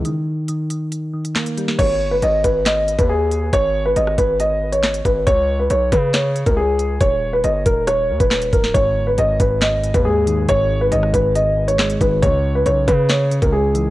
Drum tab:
CC |----------------|x---------------|----------------|----------------|
HH |x---x-x-x--x-xx-|x---x-x-x-xx--x-|x---x-x-x--x-xx-|x---x-x-x-xx--x-|
CP |------------x---|--------x-------|------------x---|--------x-------|
SD |------------o--o|--------o-------|-----r------o---|--------o-------|
BD |----------------|o-----o----o----|o-----o-------o-|o-----o----o----|

CC |----------------|----------------|----------------|----------------|
HH |x---x-x-x--x-xx-|x---x-x-x-xx--x-|x---x-x-x--x-xx-|x---x-x-x-xx--x-|
CP |------------x---|--------x-------|------------x---|--------x-------|
SD |--------r---o--o|--------o-------|-----r------o---|--------o-------|
BD |o-----o----o--o-|o-----o----o----|o-----o-------o-|o-----o----o----|